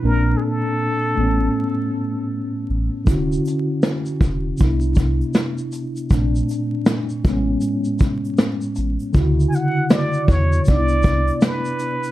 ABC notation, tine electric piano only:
X:1
M:4/4
L:1/8
Q:"Swing 16ths" 1/4=79
K:Dlyd
V:1 name="Tine electric piano"
[_B,,_B,=CD]3 [A,,A,=B,^C]4- [A,,A,B,C] | [D,CEF]4 [=C,B,DE]4 | [_B,,A,=CD]3 [A,,G,=B,^C]4- [A,,G,B,C] | [C,D,EF]4 [=C,B,D_E=E]4 |]